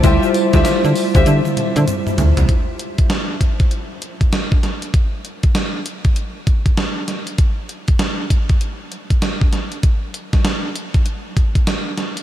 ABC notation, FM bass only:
X:1
M:4/4
L:1/16
Q:"Swing 16ths" 1/4=98
K:Dm
V:1 name="FM bass" clef=bass
D,, z2 D,, D, D, z D,, D, z D, D, z2 D,, C,, | z16 | z16 | z16 |
z16 |]